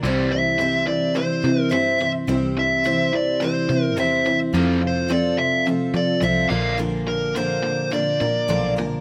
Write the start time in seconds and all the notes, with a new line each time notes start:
0.03 C2 C3 E3 G3 C4 E4 C5
0.31 C3 E3 E5
0.59 C3 E3 G3 C4 E4 C5
0.87 C3 E3 D5
1.14 C3 E3 G3 C4 E4 C5
1.42 C3 E3 C4 E4 C5
1.61 A#4
1.70 G2 C3 E3 G3 C4 E4 C5 E5
1.98 C3 E3 C4 E4 C5
2.27 C2 C3 E3 G3 C4 E4 C5
2.57 C3 E3 E5
2.84 C3 E3 G3 C4 E4 C5
3.13 C3 E3 D5
3.40 C3 E3 G3 C4 E4 C5
3.69 C3 E3 C4 E4 C5
3.97 E2 C3 E3 G3 C4 E4 C5 E5
4.25 C3 E3 C4 E4 C5
4.53 F2 C3 F3 C4 F4 A4
4.82 F2 C3
4.87 C5
5.08 F2 C3 F3 C4 F4 A4 D5
5.38 F2 C3 E5
5.66 F2 C3 F3 C4 F4 A4
5.94 F2 C3 F3 C4 F4 A4 D5
6.21 C2 F2 C3 F3 C4 F4 A4 E5
6.49 A#1 A#2 D3 A#3 D4 A#4 F5
6.54 F3
6.78 A#2 D3 F3 A#3 D4 A#4
7.07 A#2 D3 A#4
7.35 A#2 D3 F3 A#3 D4 A#4 C5
7.63 A#2 D3
7.91 A#2 D3 F3 A#3 D4 A#4 D5
8.20 A#2 D3 F3 A#3 D4 A#4
8.48 B1 A#2 D3 F3 A#3 D4 A#4
8.76 A#2 D3 F3 A#3 D4 A#4